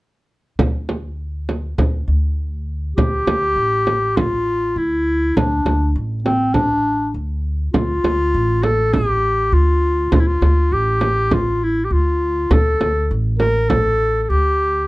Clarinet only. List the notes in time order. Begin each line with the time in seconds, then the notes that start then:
2.97 G4
4.17 F4
4.78 E4
5.37 D4
6.24 C4
6.54 D4
7.74 F4
8.64 A4
8.94 G4
9.54 F4
10.14 F4
10.20 E4
10.27 F4
10.73 G4
11.34 F4
11.64 E4
11.85 G4
11.93 F4
12.53 A4
13.39 A#4
13.69 A4
14.22 A4
14.29 G4